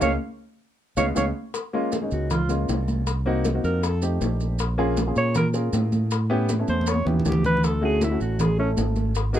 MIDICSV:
0, 0, Header, 1, 6, 480
1, 0, Start_track
1, 0, Tempo, 380952
1, 24, Time_signature, 4, 2, 24, 8
1, 11839, End_track
2, 0, Start_track
2, 0, Title_t, "Flute"
2, 0, Program_c, 0, 73
2, 15, Note_on_c, 0, 77, 92
2, 173, Note_off_c, 0, 77, 0
2, 1218, Note_on_c, 0, 77, 83
2, 1375, Note_off_c, 0, 77, 0
2, 1452, Note_on_c, 0, 77, 85
2, 1612, Note_off_c, 0, 77, 0
2, 11839, End_track
3, 0, Start_track
3, 0, Title_t, "Alto saxophone"
3, 0, Program_c, 1, 65
3, 29, Note_on_c, 1, 73, 84
3, 143, Note_off_c, 1, 73, 0
3, 1231, Note_on_c, 1, 73, 79
3, 1345, Note_off_c, 1, 73, 0
3, 1475, Note_on_c, 1, 73, 79
3, 1588, Note_off_c, 1, 73, 0
3, 2683, Note_on_c, 1, 66, 67
3, 2923, Note_on_c, 1, 65, 73
3, 2942, Note_off_c, 1, 66, 0
3, 3157, Note_off_c, 1, 65, 0
3, 4595, Note_on_c, 1, 70, 88
3, 4830, Note_on_c, 1, 69, 78
3, 4849, Note_off_c, 1, 70, 0
3, 5071, Note_off_c, 1, 69, 0
3, 6524, Note_on_c, 1, 73, 100
3, 6741, Note_off_c, 1, 73, 0
3, 6771, Note_on_c, 1, 70, 89
3, 6909, Note_off_c, 1, 70, 0
3, 8435, Note_on_c, 1, 72, 88
3, 8681, Note_on_c, 1, 73, 88
3, 8700, Note_off_c, 1, 72, 0
3, 8915, Note_off_c, 1, 73, 0
3, 8921, Note_on_c, 1, 64, 52
3, 9123, Note_off_c, 1, 64, 0
3, 9172, Note_on_c, 1, 67, 86
3, 9392, Note_off_c, 1, 67, 0
3, 9399, Note_on_c, 1, 71, 120
3, 9635, Note_on_c, 1, 69, 93
3, 9653, Note_off_c, 1, 71, 0
3, 9871, Note_off_c, 1, 69, 0
3, 9888, Note_on_c, 1, 68, 100
3, 10126, Note_on_c, 1, 64, 85
3, 10145, Note_off_c, 1, 68, 0
3, 10348, Note_off_c, 1, 64, 0
3, 10355, Note_on_c, 1, 66, 82
3, 10598, Note_on_c, 1, 68, 97
3, 10617, Note_off_c, 1, 66, 0
3, 10821, Note_off_c, 1, 68, 0
3, 10828, Note_on_c, 1, 61, 83
3, 10971, Note_off_c, 1, 61, 0
3, 11791, Note_on_c, 1, 68, 97
3, 11839, Note_off_c, 1, 68, 0
3, 11839, End_track
4, 0, Start_track
4, 0, Title_t, "Grand piano"
4, 0, Program_c, 2, 0
4, 8, Note_on_c, 2, 61, 93
4, 9, Note_on_c, 2, 58, 95
4, 13, Note_on_c, 2, 56, 93
4, 168, Note_off_c, 2, 61, 0
4, 169, Note_off_c, 2, 58, 0
4, 171, Note_off_c, 2, 56, 0
4, 1220, Note_on_c, 2, 56, 92
4, 1220, Note_on_c, 2, 59, 84
4, 1220, Note_on_c, 2, 61, 88
4, 1377, Note_off_c, 2, 56, 0
4, 1377, Note_off_c, 2, 59, 0
4, 1377, Note_off_c, 2, 61, 0
4, 1446, Note_on_c, 2, 61, 77
4, 1449, Note_on_c, 2, 56, 83
4, 1455, Note_on_c, 2, 59, 79
4, 1609, Note_off_c, 2, 61, 0
4, 1610, Note_off_c, 2, 56, 0
4, 1614, Note_off_c, 2, 59, 0
4, 2184, Note_on_c, 2, 58, 88
4, 2186, Note_on_c, 2, 56, 92
4, 2191, Note_on_c, 2, 61, 88
4, 2198, Note_on_c, 2, 65, 99
4, 2438, Note_off_c, 2, 58, 0
4, 2440, Note_off_c, 2, 56, 0
4, 2442, Note_off_c, 2, 61, 0
4, 2446, Note_off_c, 2, 65, 0
4, 2537, Note_on_c, 2, 58, 53
4, 2538, Note_on_c, 2, 56, 66
4, 2546, Note_on_c, 2, 61, 62
4, 2550, Note_on_c, 2, 63, 66
4, 2964, Note_off_c, 2, 56, 0
4, 2964, Note_off_c, 2, 58, 0
4, 2968, Note_off_c, 2, 61, 0
4, 2970, Note_off_c, 2, 63, 0
4, 3133, Note_on_c, 2, 56, 73
4, 3140, Note_on_c, 2, 58, 60
4, 3141, Note_on_c, 2, 61, 66
4, 3149, Note_on_c, 2, 65, 72
4, 3814, Note_off_c, 2, 56, 0
4, 3818, Note_off_c, 2, 58, 0
4, 3818, Note_off_c, 2, 61, 0
4, 3822, Note_off_c, 2, 65, 0
4, 4104, Note_on_c, 2, 58, 98
4, 4106, Note_on_c, 2, 60, 90
4, 4114, Note_on_c, 2, 63, 88
4, 4119, Note_on_c, 2, 66, 102
4, 4360, Note_off_c, 2, 58, 0
4, 4361, Note_off_c, 2, 60, 0
4, 4365, Note_off_c, 2, 63, 0
4, 4367, Note_off_c, 2, 66, 0
4, 4460, Note_on_c, 2, 58, 62
4, 4463, Note_on_c, 2, 60, 55
4, 4468, Note_on_c, 2, 63, 60
4, 4472, Note_on_c, 2, 66, 74
4, 4826, Note_off_c, 2, 58, 0
4, 4827, Note_off_c, 2, 60, 0
4, 4830, Note_off_c, 2, 63, 0
4, 4832, Note_off_c, 2, 66, 0
4, 5064, Note_on_c, 2, 57, 68
4, 5068, Note_on_c, 2, 60, 57
4, 5071, Note_on_c, 2, 63, 60
4, 5076, Note_on_c, 2, 67, 82
4, 5740, Note_off_c, 2, 57, 0
4, 5742, Note_off_c, 2, 60, 0
4, 5743, Note_off_c, 2, 63, 0
4, 5746, Note_off_c, 2, 67, 0
4, 6021, Note_on_c, 2, 58, 98
4, 6024, Note_on_c, 2, 61, 94
4, 6032, Note_on_c, 2, 65, 96
4, 6033, Note_on_c, 2, 68, 109
4, 6278, Note_off_c, 2, 58, 0
4, 6279, Note_off_c, 2, 61, 0
4, 6284, Note_off_c, 2, 65, 0
4, 6284, Note_off_c, 2, 68, 0
4, 6379, Note_on_c, 2, 58, 61
4, 6384, Note_on_c, 2, 61, 56
4, 6386, Note_on_c, 2, 65, 58
4, 6397, Note_on_c, 2, 68, 71
4, 6805, Note_off_c, 2, 58, 0
4, 6808, Note_off_c, 2, 61, 0
4, 6808, Note_off_c, 2, 65, 0
4, 6814, Note_off_c, 2, 68, 0
4, 6979, Note_on_c, 2, 70, 67
4, 6982, Note_on_c, 2, 61, 62
4, 6986, Note_on_c, 2, 65, 67
4, 6992, Note_on_c, 2, 68, 70
4, 7656, Note_off_c, 2, 70, 0
4, 7658, Note_off_c, 2, 61, 0
4, 7660, Note_off_c, 2, 65, 0
4, 7663, Note_off_c, 2, 68, 0
4, 7933, Note_on_c, 2, 61, 91
4, 7934, Note_on_c, 2, 59, 102
4, 7936, Note_on_c, 2, 64, 88
4, 7947, Note_on_c, 2, 67, 112
4, 8193, Note_off_c, 2, 61, 0
4, 8194, Note_off_c, 2, 59, 0
4, 8195, Note_off_c, 2, 64, 0
4, 8200, Note_off_c, 2, 67, 0
4, 8298, Note_on_c, 2, 59, 64
4, 8302, Note_on_c, 2, 61, 65
4, 8311, Note_on_c, 2, 64, 61
4, 8315, Note_on_c, 2, 69, 66
4, 8723, Note_off_c, 2, 59, 0
4, 8725, Note_off_c, 2, 61, 0
4, 8730, Note_off_c, 2, 64, 0
4, 8732, Note_off_c, 2, 69, 0
4, 8884, Note_on_c, 2, 59, 71
4, 8894, Note_on_c, 2, 61, 55
4, 8896, Note_on_c, 2, 64, 59
4, 8903, Note_on_c, 2, 67, 72
4, 9567, Note_off_c, 2, 59, 0
4, 9572, Note_off_c, 2, 61, 0
4, 9573, Note_off_c, 2, 64, 0
4, 9577, Note_off_c, 2, 67, 0
4, 9846, Note_on_c, 2, 57, 80
4, 9852, Note_on_c, 2, 61, 75
4, 9856, Note_on_c, 2, 64, 73
4, 9862, Note_on_c, 2, 66, 96
4, 10108, Note_off_c, 2, 57, 0
4, 10112, Note_off_c, 2, 61, 0
4, 10113, Note_off_c, 2, 64, 0
4, 10117, Note_off_c, 2, 66, 0
4, 10211, Note_on_c, 2, 57, 61
4, 10218, Note_on_c, 2, 61, 58
4, 10220, Note_on_c, 2, 64, 55
4, 10227, Note_on_c, 2, 66, 73
4, 10639, Note_off_c, 2, 57, 0
4, 10642, Note_off_c, 2, 61, 0
4, 10643, Note_off_c, 2, 64, 0
4, 10646, Note_off_c, 2, 66, 0
4, 10811, Note_on_c, 2, 61, 64
4, 10813, Note_on_c, 2, 57, 66
4, 10824, Note_on_c, 2, 64, 63
4, 10829, Note_on_c, 2, 69, 67
4, 11489, Note_off_c, 2, 61, 0
4, 11490, Note_off_c, 2, 57, 0
4, 11496, Note_off_c, 2, 64, 0
4, 11498, Note_off_c, 2, 69, 0
4, 11756, Note_on_c, 2, 58, 87
4, 11765, Note_on_c, 2, 59, 77
4, 11766, Note_on_c, 2, 63, 79
4, 11773, Note_on_c, 2, 66, 96
4, 11839, Note_off_c, 2, 58, 0
4, 11839, Note_off_c, 2, 59, 0
4, 11839, Note_off_c, 2, 63, 0
4, 11839, Note_off_c, 2, 66, 0
4, 11839, End_track
5, 0, Start_track
5, 0, Title_t, "Fingered electric bass"
5, 0, Program_c, 3, 33
5, 24, Note_on_c, 3, 37, 88
5, 203, Note_off_c, 3, 37, 0
5, 1221, Note_on_c, 3, 37, 100
5, 1403, Note_off_c, 3, 37, 0
5, 1468, Note_on_c, 3, 37, 92
5, 1647, Note_off_c, 3, 37, 0
5, 2670, Note_on_c, 3, 37, 88
5, 3340, Note_off_c, 3, 37, 0
5, 3389, Note_on_c, 3, 36, 88
5, 4516, Note_off_c, 3, 36, 0
5, 4586, Note_on_c, 3, 41, 95
5, 5258, Note_off_c, 3, 41, 0
5, 5303, Note_on_c, 3, 34, 91
5, 6433, Note_off_c, 3, 34, 0
5, 6504, Note_on_c, 3, 46, 97
5, 7177, Note_off_c, 3, 46, 0
5, 7219, Note_on_c, 3, 45, 90
5, 8350, Note_off_c, 3, 45, 0
5, 8421, Note_on_c, 3, 40, 87
5, 8871, Note_off_c, 3, 40, 0
5, 8893, Note_on_c, 3, 39, 73
5, 9124, Note_off_c, 3, 39, 0
5, 9145, Note_on_c, 3, 38, 91
5, 10271, Note_off_c, 3, 38, 0
5, 10340, Note_on_c, 3, 33, 93
5, 11012, Note_off_c, 3, 33, 0
5, 11060, Note_on_c, 3, 32, 101
5, 11839, Note_off_c, 3, 32, 0
5, 11839, End_track
6, 0, Start_track
6, 0, Title_t, "Drums"
6, 17, Note_on_c, 9, 70, 94
6, 18, Note_on_c, 9, 61, 92
6, 20, Note_on_c, 9, 63, 86
6, 143, Note_off_c, 9, 70, 0
6, 144, Note_off_c, 9, 61, 0
6, 146, Note_off_c, 9, 63, 0
6, 1221, Note_on_c, 9, 61, 85
6, 1221, Note_on_c, 9, 70, 101
6, 1223, Note_on_c, 9, 63, 86
6, 1347, Note_off_c, 9, 61, 0
6, 1347, Note_off_c, 9, 70, 0
6, 1349, Note_off_c, 9, 63, 0
6, 1463, Note_on_c, 9, 70, 89
6, 1465, Note_on_c, 9, 61, 93
6, 1467, Note_on_c, 9, 63, 96
6, 1589, Note_off_c, 9, 70, 0
6, 1591, Note_off_c, 9, 61, 0
6, 1593, Note_off_c, 9, 63, 0
6, 1940, Note_on_c, 9, 60, 67
6, 1946, Note_on_c, 9, 70, 70
6, 1953, Note_on_c, 9, 63, 33
6, 2066, Note_off_c, 9, 60, 0
6, 2072, Note_off_c, 9, 70, 0
6, 2079, Note_off_c, 9, 63, 0
6, 2187, Note_on_c, 9, 63, 35
6, 2190, Note_on_c, 9, 60, 35
6, 2313, Note_off_c, 9, 63, 0
6, 2316, Note_off_c, 9, 60, 0
6, 2419, Note_on_c, 9, 70, 64
6, 2425, Note_on_c, 9, 60, 52
6, 2432, Note_on_c, 9, 63, 96
6, 2545, Note_off_c, 9, 70, 0
6, 2551, Note_off_c, 9, 60, 0
6, 2558, Note_off_c, 9, 63, 0
6, 2658, Note_on_c, 9, 70, 27
6, 2675, Note_on_c, 9, 63, 39
6, 2784, Note_off_c, 9, 70, 0
6, 2801, Note_off_c, 9, 63, 0
6, 2902, Note_on_c, 9, 70, 62
6, 2908, Note_on_c, 9, 60, 70
6, 2913, Note_on_c, 9, 63, 37
6, 2913, Note_on_c, 9, 64, 85
6, 3028, Note_off_c, 9, 70, 0
6, 3034, Note_off_c, 9, 60, 0
6, 3039, Note_off_c, 9, 63, 0
6, 3039, Note_off_c, 9, 64, 0
6, 3142, Note_on_c, 9, 70, 59
6, 3150, Note_on_c, 9, 60, 34
6, 3268, Note_off_c, 9, 70, 0
6, 3276, Note_off_c, 9, 60, 0
6, 3387, Note_on_c, 9, 70, 64
6, 3390, Note_on_c, 9, 63, 78
6, 3395, Note_on_c, 9, 60, 35
6, 3395, Note_on_c, 9, 61, 84
6, 3513, Note_off_c, 9, 70, 0
6, 3516, Note_off_c, 9, 63, 0
6, 3521, Note_off_c, 9, 60, 0
6, 3521, Note_off_c, 9, 61, 0
6, 3627, Note_on_c, 9, 60, 35
6, 3629, Note_on_c, 9, 70, 26
6, 3630, Note_on_c, 9, 63, 75
6, 3753, Note_off_c, 9, 60, 0
6, 3755, Note_off_c, 9, 70, 0
6, 3756, Note_off_c, 9, 63, 0
6, 3865, Note_on_c, 9, 70, 70
6, 3867, Note_on_c, 9, 60, 62
6, 3874, Note_on_c, 9, 63, 33
6, 3991, Note_off_c, 9, 70, 0
6, 3993, Note_off_c, 9, 60, 0
6, 4000, Note_off_c, 9, 63, 0
6, 4108, Note_on_c, 9, 60, 32
6, 4110, Note_on_c, 9, 63, 33
6, 4234, Note_off_c, 9, 60, 0
6, 4236, Note_off_c, 9, 63, 0
6, 4342, Note_on_c, 9, 70, 68
6, 4349, Note_on_c, 9, 60, 59
6, 4355, Note_on_c, 9, 63, 93
6, 4468, Note_off_c, 9, 70, 0
6, 4475, Note_off_c, 9, 60, 0
6, 4481, Note_off_c, 9, 63, 0
6, 4589, Note_on_c, 9, 70, 30
6, 4596, Note_on_c, 9, 63, 37
6, 4715, Note_off_c, 9, 70, 0
6, 4722, Note_off_c, 9, 63, 0
6, 4830, Note_on_c, 9, 70, 69
6, 4831, Note_on_c, 9, 60, 66
6, 4831, Note_on_c, 9, 63, 38
6, 4956, Note_off_c, 9, 70, 0
6, 4957, Note_off_c, 9, 60, 0
6, 4957, Note_off_c, 9, 63, 0
6, 5065, Note_on_c, 9, 70, 64
6, 5068, Note_on_c, 9, 63, 31
6, 5074, Note_on_c, 9, 60, 37
6, 5191, Note_off_c, 9, 70, 0
6, 5194, Note_off_c, 9, 63, 0
6, 5200, Note_off_c, 9, 60, 0
6, 5308, Note_on_c, 9, 70, 63
6, 5313, Note_on_c, 9, 60, 36
6, 5313, Note_on_c, 9, 61, 85
6, 5314, Note_on_c, 9, 63, 93
6, 5434, Note_off_c, 9, 70, 0
6, 5439, Note_off_c, 9, 60, 0
6, 5439, Note_off_c, 9, 61, 0
6, 5440, Note_off_c, 9, 63, 0
6, 5547, Note_on_c, 9, 70, 28
6, 5551, Note_on_c, 9, 63, 34
6, 5553, Note_on_c, 9, 60, 33
6, 5673, Note_off_c, 9, 70, 0
6, 5677, Note_off_c, 9, 63, 0
6, 5679, Note_off_c, 9, 60, 0
6, 5780, Note_on_c, 9, 70, 72
6, 5789, Note_on_c, 9, 63, 33
6, 5798, Note_on_c, 9, 60, 70
6, 5906, Note_off_c, 9, 70, 0
6, 5915, Note_off_c, 9, 63, 0
6, 5924, Note_off_c, 9, 60, 0
6, 6030, Note_on_c, 9, 63, 36
6, 6040, Note_on_c, 9, 60, 31
6, 6156, Note_off_c, 9, 63, 0
6, 6166, Note_off_c, 9, 60, 0
6, 6260, Note_on_c, 9, 70, 71
6, 6267, Note_on_c, 9, 63, 96
6, 6282, Note_on_c, 9, 60, 53
6, 6386, Note_off_c, 9, 70, 0
6, 6393, Note_off_c, 9, 63, 0
6, 6408, Note_off_c, 9, 60, 0
6, 6499, Note_on_c, 9, 70, 29
6, 6512, Note_on_c, 9, 63, 37
6, 6625, Note_off_c, 9, 70, 0
6, 6638, Note_off_c, 9, 63, 0
6, 6737, Note_on_c, 9, 70, 70
6, 6747, Note_on_c, 9, 63, 38
6, 6747, Note_on_c, 9, 64, 89
6, 6750, Note_on_c, 9, 60, 67
6, 6863, Note_off_c, 9, 70, 0
6, 6873, Note_off_c, 9, 63, 0
6, 6873, Note_off_c, 9, 64, 0
6, 6876, Note_off_c, 9, 60, 0
6, 6977, Note_on_c, 9, 70, 60
6, 6988, Note_on_c, 9, 60, 35
6, 6988, Note_on_c, 9, 63, 34
6, 7103, Note_off_c, 9, 70, 0
6, 7114, Note_off_c, 9, 60, 0
6, 7114, Note_off_c, 9, 63, 0
6, 7219, Note_on_c, 9, 70, 68
6, 7224, Note_on_c, 9, 63, 89
6, 7233, Note_on_c, 9, 60, 36
6, 7233, Note_on_c, 9, 61, 84
6, 7345, Note_off_c, 9, 70, 0
6, 7350, Note_off_c, 9, 63, 0
6, 7359, Note_off_c, 9, 60, 0
6, 7359, Note_off_c, 9, 61, 0
6, 7461, Note_on_c, 9, 70, 29
6, 7462, Note_on_c, 9, 63, 84
6, 7478, Note_on_c, 9, 60, 34
6, 7587, Note_off_c, 9, 70, 0
6, 7588, Note_off_c, 9, 63, 0
6, 7604, Note_off_c, 9, 60, 0
6, 7696, Note_on_c, 9, 70, 72
6, 7701, Note_on_c, 9, 63, 35
6, 7710, Note_on_c, 9, 60, 70
6, 7822, Note_off_c, 9, 70, 0
6, 7827, Note_off_c, 9, 63, 0
6, 7836, Note_off_c, 9, 60, 0
6, 7946, Note_on_c, 9, 63, 32
6, 7953, Note_on_c, 9, 60, 31
6, 8072, Note_off_c, 9, 63, 0
6, 8079, Note_off_c, 9, 60, 0
6, 8176, Note_on_c, 9, 70, 70
6, 8181, Note_on_c, 9, 63, 92
6, 8186, Note_on_c, 9, 60, 58
6, 8302, Note_off_c, 9, 70, 0
6, 8307, Note_off_c, 9, 63, 0
6, 8312, Note_off_c, 9, 60, 0
6, 8413, Note_on_c, 9, 70, 28
6, 8420, Note_on_c, 9, 63, 94
6, 8539, Note_off_c, 9, 70, 0
6, 8546, Note_off_c, 9, 63, 0
6, 8584, Note_on_c, 9, 63, 92
6, 8650, Note_on_c, 9, 70, 70
6, 8665, Note_on_c, 9, 60, 76
6, 8710, Note_off_c, 9, 63, 0
6, 8746, Note_on_c, 9, 63, 76
6, 8776, Note_off_c, 9, 70, 0
6, 8791, Note_off_c, 9, 60, 0
6, 8872, Note_off_c, 9, 63, 0
6, 8905, Note_on_c, 9, 64, 89
6, 8907, Note_on_c, 9, 60, 36
6, 9031, Note_off_c, 9, 64, 0
6, 9033, Note_off_c, 9, 60, 0
6, 9067, Note_on_c, 9, 64, 70
6, 9137, Note_on_c, 9, 70, 68
6, 9145, Note_on_c, 9, 60, 37
6, 9145, Note_on_c, 9, 61, 86
6, 9193, Note_off_c, 9, 64, 0
6, 9223, Note_on_c, 9, 64, 113
6, 9263, Note_off_c, 9, 70, 0
6, 9271, Note_off_c, 9, 60, 0
6, 9271, Note_off_c, 9, 61, 0
6, 9349, Note_off_c, 9, 64, 0
6, 9380, Note_on_c, 9, 64, 100
6, 9385, Note_on_c, 9, 60, 33
6, 9387, Note_on_c, 9, 70, 29
6, 9506, Note_off_c, 9, 64, 0
6, 9511, Note_off_c, 9, 60, 0
6, 9513, Note_off_c, 9, 70, 0
6, 9539, Note_on_c, 9, 64, 67
6, 9618, Note_on_c, 9, 63, 33
6, 9621, Note_on_c, 9, 70, 73
6, 9629, Note_on_c, 9, 60, 69
6, 9665, Note_off_c, 9, 64, 0
6, 9744, Note_off_c, 9, 63, 0
6, 9747, Note_off_c, 9, 70, 0
6, 9755, Note_off_c, 9, 60, 0
6, 9855, Note_on_c, 9, 63, 33
6, 9868, Note_on_c, 9, 60, 36
6, 9981, Note_off_c, 9, 63, 0
6, 9994, Note_off_c, 9, 60, 0
6, 10097, Note_on_c, 9, 63, 99
6, 10101, Note_on_c, 9, 70, 70
6, 10112, Note_on_c, 9, 60, 57
6, 10223, Note_off_c, 9, 63, 0
6, 10227, Note_off_c, 9, 70, 0
6, 10238, Note_off_c, 9, 60, 0
6, 10333, Note_on_c, 9, 63, 37
6, 10339, Note_on_c, 9, 70, 31
6, 10459, Note_off_c, 9, 63, 0
6, 10465, Note_off_c, 9, 70, 0
6, 10576, Note_on_c, 9, 70, 67
6, 10579, Note_on_c, 9, 63, 38
6, 10579, Note_on_c, 9, 64, 94
6, 10594, Note_on_c, 9, 60, 70
6, 10702, Note_off_c, 9, 70, 0
6, 10705, Note_off_c, 9, 63, 0
6, 10705, Note_off_c, 9, 64, 0
6, 10720, Note_off_c, 9, 60, 0
6, 10818, Note_on_c, 9, 63, 33
6, 10836, Note_on_c, 9, 60, 35
6, 10944, Note_off_c, 9, 63, 0
6, 10962, Note_off_c, 9, 60, 0
6, 11052, Note_on_c, 9, 63, 91
6, 11054, Note_on_c, 9, 70, 73
6, 11066, Note_on_c, 9, 60, 34
6, 11066, Note_on_c, 9, 61, 85
6, 11178, Note_off_c, 9, 63, 0
6, 11180, Note_off_c, 9, 70, 0
6, 11192, Note_off_c, 9, 60, 0
6, 11192, Note_off_c, 9, 61, 0
6, 11286, Note_on_c, 9, 70, 28
6, 11290, Note_on_c, 9, 63, 89
6, 11302, Note_on_c, 9, 60, 32
6, 11412, Note_off_c, 9, 70, 0
6, 11416, Note_off_c, 9, 63, 0
6, 11428, Note_off_c, 9, 60, 0
6, 11528, Note_on_c, 9, 70, 72
6, 11548, Note_on_c, 9, 60, 70
6, 11654, Note_off_c, 9, 70, 0
6, 11674, Note_off_c, 9, 60, 0
6, 11769, Note_on_c, 9, 70, 57
6, 11773, Note_on_c, 9, 63, 34
6, 11787, Note_on_c, 9, 60, 34
6, 11839, Note_off_c, 9, 60, 0
6, 11839, Note_off_c, 9, 63, 0
6, 11839, Note_off_c, 9, 70, 0
6, 11839, End_track
0, 0, End_of_file